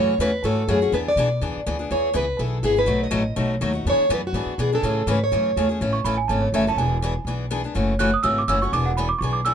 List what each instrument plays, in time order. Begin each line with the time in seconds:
Already playing: upright bass F#2, steel-string acoustic guitar C#3 E3 A3 C#4 F#4 C#5
0.18 upright bass E2, steel-string acoustic guitar C#3 E3 A3 C#4 F#4 B4
0.43 upright bass G#2, steel-string acoustic guitar C#3 E3 A3 C#4 F#4 A4
0.68 upright bass F#2, steel-string acoustic guitar C#3 E3 A3 C#4 F#4 G#4
0.82 steel-string acoustic guitar A3 C#4 F#4
0.92 upright bass E2, steel-string acoustic guitar E3 B3 D4 G#4 B4
1.08 steel-string acoustic guitar D5
1.16 upright bass B2, steel-string acoustic guitar E3 B3 D4 G#4
1.41 upright bass E2, steel-string acoustic guitar E3 B3 D4 G#4
1.56 muted upright bass stroke
1.66 upright bass D2, steel-string acoustic guitar E3 B3 D4 G#4
1.79 steel-string acoustic guitar B3 D4 G#4
1.91 upright bass E2, steel-string acoustic guitar E3 B3 E4 G#4 C#5
2.14 upright bass C#2, steel-string acoustic guitar E3 B3 E4 G#4 B4
2.39 upright bass B1, steel-string acoustic guitar E3 B3 E4 G#4 A4
2.63 upright bass G#1, steel-string acoustic guitar E3 B3 E4 G#4
2.76 steel-string acoustic guitar B3 E4 G#4 B4
2.86 upright bass B1, steel-string acoustic guitar B2 F#3 A3 D#4 F#4
3.04 steel-string acoustic guitar D#5
3.11 upright bass A1, steel-string acoustic guitar B2 F#3 A3 D#4 F#4
3.36 upright bass B1, steel-string acoustic guitar B2 F#3 A3 D#4 F#4
3.61 upright bass D#2, steel-string acoustic guitar B2 F#3 A3 D#4 F#4
3.73 steel-string acoustic guitar A3 D#4 F#4
3.85 upright bass E2, steel-string acoustic guitar E3 B3 D4 G#4
3.90 steel-string acoustic guitar C#5
3.98 muted upright bass stroke
4.09 upright bass F#2, steel-string acoustic guitar E3 B3 D4 G#4
4.14 steel-string acoustic guitar B4
4.27 steel-string acoustic guitar F#4
4.33 upright bass G#2, steel-string acoustic guitar E3 B3 D4 G#4
4.46 muted upright bass stroke
4.58 upright bass B2, steel-string acoustic guitar E3 B3 D4 G#4
4.72 steel-string acoustic guitar B3 D4 G#4 A4
4.83 upright bass A2, steel-string acoustic guitar C#3 E3 A3 C#4 G#4
5.07 upright bass G#2, steel-string acoustic guitar C#3 E3 A3 C#4 G#4
5.11 steel-string acoustic guitar B4
5.24 steel-string acoustic guitar C#5
5.32 upright bass F#2, steel-string acoustic guitar C#3 E3 A3 C#4 G#4
5.56 upright bass E2, steel-string acoustic guitar C#3 E3 A3 C#4 G#4
5.69 steel-string acoustic guitar A3 C#4 G#4
5.81 upright bass A1, steel-string acoustic guitar C#3 E3 A3 C#4 A4
5.93 celesta C#6
6.04 upright bass A1, steel-string acoustic guitar C#3 E3 A3 C#4 A4, celesta B5
6.17 celesta G#5
6.28 upright bass G#1, steel-string acoustic guitar C#3 E3 A3 C#4 A4, celesta A5
6.42 celesta C#5
6.52 upright bass F#1, steel-string acoustic guitar C#3 E3 A3 C#4 A4, celesta E5
6.67 steel-string acoustic guitar A3 C#4 A4, celesta A5
6.76 upright bass E1, steel-string acoustic guitar E3 B3 D4 G#4, celesta G#5
7.02 steel-string acoustic guitar E3 B3 D4 G#4
7.25 upright bass B1, steel-string acoustic guitar E3 B3 D4 G#4
7.51 steel-string acoustic guitar E3 B3 D4 G#4
7.64 steel-string acoustic guitar B3 D4 G#4
7.75 upright bass F#1, steel-string acoustic guitar C#3 E3 A3 C#4 F#4
7.99 steel-string acoustic guitar C#3 E3 A3 C#4 F#4, celesta F#6
8.14 celesta D#6
8.23 upright bass G#1, steel-string acoustic guitar C#3 E3 A3 C#4 F#4, celesta E6
8.38 celesta D6
8.48 upright bass F#1, steel-string acoustic guitar C#3 E3 A3 C#4 F#4, celesta E6
8.62 steel-string acoustic guitar A3 C#4 F#4, celesta C#6
8.72 upright bass E1, steel-string acoustic guitar E3 B3 D4 G#4, celesta D6
8.86 celesta F#5
8.97 steel-string acoustic guitar E3 B3 D4 G#4, celesta B5
9.09 celesta D6
9.19 upright bass B1, steel-string acoustic guitar E3, celesta C#6
9.23 steel-string acoustic guitar B3 D4 G#4
9.33 celesta D6
9.45 steel-string acoustic guitar E3 B3 D4 G#4, celesta E6